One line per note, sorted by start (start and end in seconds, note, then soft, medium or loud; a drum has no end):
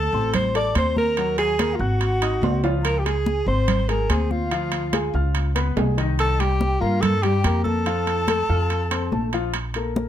0.00 0.31 A4 loud
0.00 0.30 A5 medium
0.13 0.72 A1 medium
0.13 0.48 C4 medium
0.13 0.48 C5 medium
0.13 0.48 C6 medium
0.13 high conga soft
0.34 0.54 C5 loud
0.34 0.53 C6 medium
0.34 high conga soft
0.34 low conga medium
0.34 high timbale loud
0.55 0.72 A3 medium
0.55 0.72 A4 medium
0.55 0.75 D5 loud
0.55 0.72 A5 medium
0.55 0.75 D6 medium
0.55 high conga soft
0.55 high timbale medium
0.75 1.74 D#2 medium
0.75 1.10 C4 medium
0.75 1.10 C5 medium
0.75 0.96 C5 loud
0.75 0.95 C6 medium
0.75 1.10 C6 medium
0.75 high conga medium
0.75 high timbale medium
0.96 1.36 A#4 loud
0.96 1.35 A#5 medium
0.96 high conga medium
1.17 1.52 F#3 medium
1.17 1.52 F#4 medium
1.17 1.52 F#5 medium
1.17 high conga soft
1.17 high timbale medium
1.38 1.77 G#4 loud
1.38 1.75 G#5 medium
1.38 high conga soft
1.38 high timbale medium
1.59 1.77 A#3 medium
1.59 1.77 A#4 medium
1.59 1.77 A#5 medium
1.59 high conga loud
1.59 high timbale medium
1.73 1.82 F4 medium
1.73 1.80 F5 medium
1.79 2.38 G#1 medium
1.79 2.14 F#4 medium
1.79 2.64 F#4 loud
1.79 2.63 F#5 medium
1.79 2.14 F#5 medium
1.79 2.15 F#6 medium
2.01 high conga soft
2.01 high timbale medium
2.22 2.39 D#4 medium
2.22 2.39 D#5 medium
2.22 2.39 D#6 medium
2.22 high conga soft
2.22 high timbale medium
2.42 3.41 C#2 medium
2.42 2.60 C4 medium
2.42 2.60 C5 medium
2.42 2.61 C6 medium
2.42 high conga medium
2.42 low timbale medium
2.64 2.98 F3 medium
2.64 2.98 F4 medium
2.64 2.98 F5 medium
2.64 high conga soft
2.64 high timbale medium
2.83 3.00 A#4 medium
2.83 2.99 A#5 medium
2.83 high conga soft
2.83 high timbale loud
2.98 3.07 G4 medium
2.98 3.05 G5 medium
3.03 3.40 G#3 medium
3.03 3.47 G#4 medium
3.03 3.40 G#4 medium
3.03 3.46 G#5 medium
3.03 3.40 G#5 medium
3.03 high conga soft
3.03 high timbale medium
3.26 high conga loud
3.46 4.05 G#1 medium
3.46 3.82 C4 medium
3.46 3.91 C5 loud
3.46 3.82 C5 medium
3.46 3.90 C6 medium
3.46 3.82 C6 medium
3.46 high conga soft
3.68 high conga soft
3.68 low conga medium
3.68 high timbale loud
3.89 4.06 G#3 medium
3.89 4.06 G#4 medium
3.89 4.12 A#4 medium
3.89 4.06 G#5 medium
3.89 4.11 A#5 medium
3.89 high timbale medium
4.09 5.08 D2 medium
4.09 4.44 C4 medium
4.09 4.32 G#4 medium
4.09 4.44 C5 medium
4.09 4.33 G#5 medium
4.09 4.45 C6 medium
4.09 high conga medium
4.09 high timbale medium
4.31 5.14 F4 medium
4.31 5.14 F5 medium
4.31 high conga medium
4.51 4.86 F3 medium
4.51 4.86 F4 medium
4.51 4.86 F5 medium
4.51 high conga soft
4.51 high timbale medium
4.72 high conga soft
4.72 high timbale medium
4.93 5.11 G#3 medium
4.93 5.11 G#4 medium
4.93 5.11 G#5 medium
4.93 high conga loud
4.93 high timbale loud
5.14 5.73 C#2 loud
5.14 5.49 F4 medium
5.14 5.49 F5 medium
5.14 5.49 F6 medium
5.35 high conga soft
5.35 high timbale medium
5.55 5.73 B3 medium
5.55 5.73 B4 medium
5.55 5.73 B5 medium
5.55 high conga soft
5.55 high timbale medium
5.76 6.75 C2 loud
5.76 5.94 G#3 medium
5.76 5.94 G#4 medium
5.76 5.94 G#5 medium
5.76 high conga medium
5.76 low timbale medium
5.97 6.32 D#3 medium
5.97 6.32 D#4 medium
5.97 6.32 D#5 medium
5.97 high conga soft
5.97 high timbale medium
6.19 6.41 A4 loud
6.19 6.42 A5 medium
6.19 high conga soft
6.19 high timbale loud
6.39 6.74 G3 medium
6.39 6.74 G4 medium
6.39 6.82 G4 loud
6.39 6.83 G5 medium
6.39 6.74 G5 medium
6.39 high conga soft
6.39 high timbale medium
6.61 high conga medium
6.80 7.40 G2 loud
6.80 7.15 A#3 medium
6.80 7.02 F4 medium
6.80 7.16 A#4 medium
6.80 7.03 F5 medium
6.80 7.16 A#5 medium
6.80 high conga soft
7.01 7.24 A4 loud
7.01 7.24 A5 medium
7.01 high conga soft
7.01 low conga medium
7.01 high timbale medium
7.23 7.41 G3 medium
7.23 7.63 G4 loud
7.23 7.41 G4 medium
7.23 7.64 G5 medium
7.23 7.41 G5 medium
7.23 high conga soft
7.23 high timbale medium
7.44 8.43 F2 medium
7.44 7.79 A#3 medium
7.44 7.79 A#4 medium
7.44 7.79 A#5 medium
7.44 high conga medium
7.44 high timbale medium
7.64 9.28 A4 loud
7.64 9.29 A5 medium
7.64 high conga medium
7.86 8.21 F3 medium
7.86 8.21 F4 medium
7.86 8.21 F5 medium
7.86 high conga soft
7.86 high timbale medium
8.07 high conga soft
8.07 high timbale medium
8.28 8.46 A3 medium
8.28 8.46 A4 medium
8.28 8.46 A5 medium
8.28 high conga loud
8.28 high timbale medium
8.49 9.08 F2 medium
8.49 8.84 F4 medium
8.49 8.84 F5 medium
8.49 8.84 F6 medium
8.70 high conga soft
8.70 high timbale medium
8.91 9.08 C4 medium
8.91 9.08 C5 medium
8.91 9.09 C6 medium
8.91 high conga soft
8.91 high timbale medium
9.12 10.09 A#1 medium
9.12 9.29 A3 medium
9.12 9.29 A4 medium
9.12 9.30 A5 medium
9.12 high conga medium
9.33 9.50 F3 medium
9.33 9.51 F4 medium
9.33 9.51 F5 medium
9.33 high conga soft
9.33 high timbale medium
9.54 high conga soft
9.54 high timbale medium
9.74 10.09 A#3 medium
9.74 10.09 A4 medium
9.74 10.09 A#4 medium
9.74 high conga soft
9.74 high timbale medium
9.96 high conga medium